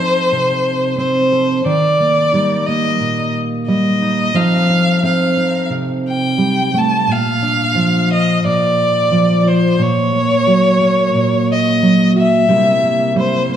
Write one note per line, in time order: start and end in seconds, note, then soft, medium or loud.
0.00 1.65 F3 soft
0.00 0.97 C4 soft
0.00 2.34 D#4 soft
0.00 1.31 A4 soft
0.00 0.99 C5 medium
0.32 1.65 C3 soft
0.98 1.61 C4 soft
0.98 1.62 C5 medium
1.32 1.61 A4 soft
1.65 4.31 D#3 soft
1.65 2.62 D5 medium
2.00 2.66 A#3 soft
2.33 3.67 G3 soft
2.33 4.01 D#4 soft
2.62 2.68 D5 soft
2.67 4.35 A#3 soft
2.67 3.34 D#5 medium
3.00 4.31 A#2 soft
3.68 4.31 G3 soft
3.68 4.38 D#5 medium
4.02 4.31 D#4 soft
4.34 6.38 F3 medium
4.34 5.02 C4 soft
4.34 4.68 D#4 soft
4.34 5.04 A4 soft
4.34 5.03 F5 medium
4.69 5.36 D#4 soft
5.03 7.04 C4 soft
5.03 7.04 A4 soft
5.03 5.68 F5 medium
5.37 7.04 D#4 soft
5.70 7.07 C3 soft
6.09 6.80 G5 medium
6.38 6.73 G3 soft
6.74 7.08 A3 soft
6.78 7.14 A5 medium
7.08 8.44 A#2 soft
7.12 8.12 F5 medium
7.42 8.10 D4 soft
7.75 9.10 F3 soft
7.75 9.45 F4 soft
8.13 8.43 D#5 medium
8.45 9.76 A#2 soft
8.45 9.41 D5 medium
9.12 9.79 F3 soft
9.41 9.50 D5 soft
9.46 9.76 F4 soft
9.46 9.83 C5 medium
9.79 11.13 A#2 medium
9.79 11.49 C#5 medium
10.13 10.80 A#3 soft
10.47 11.81 F#3 soft
10.47 12.14 F#4 soft
10.80 12.49 A#3 soft
11.14 12.44 A#2 soft
11.52 12.12 D#5 medium
11.82 12.44 F#3 soft
12.16 12.45 F#4 soft
12.16 13.13 E5 medium
12.48 13.56 C3 medium
12.48 13.14 G3 soft
12.48 12.82 A#3 soft
12.48 13.15 E4 soft
12.48 13.56 A#4 soft
12.83 13.48 A#3 soft
13.15 13.56 G3 soft
13.15 13.56 E4 soft
13.15 13.48 C5 medium
13.49 13.56 A#3 soft